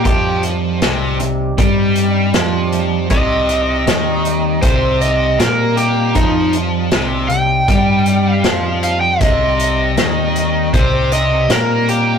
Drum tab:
HH |xxxxxxxx|xxxxxxxx|xxxxxxxx|xxxxxxxx|
SD |--o---o-|--o---o-|--o---o-|--o---o-|
BD |o---o---|o---o---|o---o---|o---o---|